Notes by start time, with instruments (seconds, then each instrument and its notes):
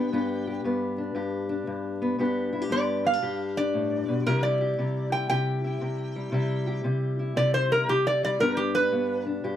Already playing: steel-string acoustic guitar G2 B3 D4 G4, resonator guitar played with a steel bar G5
0.12 steel-string acoustic guitar G2 B3 D4 G4
0.47 steel-string acoustic guitar G4
0.64 steel-string acoustic guitar G2 B3
0.98 steel-string acoustic guitar D4
1.15 steel-string acoustic guitar G2 G4
1.49 steel-string acoustic guitar D4
1.67 steel-string acoustic guitar G2
2.02 steel-string acoustic guitar B3
2.19 steel-string acoustic guitar G2 B3 D4 G4
2.53 steel-string acoustic guitar E4
2.62 steel-string acoustic guitar G4
2.70 steel-string acoustic guitar G2 B3, resonator guitar played with a steel bar D5
3.05 steel-string acoustic guitar B3, resonator guitar played with a steel bar F5
3.13 steel-string acoustic guitar D4
3.22 steel-string acoustic guitar G2 G4
3.57 steel-string acoustic guitar D4, resonator guitar played with a steel bar D5
3.74 steel-string acoustic guitar A2
4.08 steel-string acoustic guitar B2
4.26 steel-string acoustic guitar C3 G3 E4 G4, resonator guitar played with a steel bar A#4
4.43 resonator guitar played with a steel bar D5
4.61 steel-string acoustic guitar G4
4.78 steel-string acoustic guitar C3 G3
5.12 steel-string acoustic guitar E4, resonator guitar played with a steel bar G5
5.29 steel-string acoustic guitar C3 G4, resonator guitar played with a steel bar G5
5.64 steel-string acoustic guitar E4
5.81 steel-string acoustic guitar C3
6.16 steel-string acoustic guitar G3
6.32 steel-string acoustic guitar C3 G3 E4 G4
6.67 steel-string acoustic guitar G4
6.84 steel-string acoustic guitar C3 G3
7.19 steel-string acoustic guitar E4
7.36 steel-string acoustic guitar C3 G4, resonator guitar played with a steel bar D5
7.54 resonator guitar played with a steel bar C5
7.71 steel-string acoustic guitar E4, resonator guitar played with a steel bar A#4
7.89 steel-string acoustic guitar C3, resonator guitar played with a steel bar G4
8.07 resonator guitar played with a steel bar D5
8.23 steel-string acoustic guitar G3, resonator guitar played with a steel bar D5
8.40 steel-string acoustic guitar G2 B3 D4 G4, resonator guitar played with a steel bar A#4
8.57 resonator guitar played with a steel bar G4
8.75 steel-string acoustic guitar D4, resonator guitar played with a steel bar B4
8.92 steel-string acoustic guitar G2 B3
9.27 steel-string acoustic guitar D4
9.44 steel-string acoustic guitar G2 G4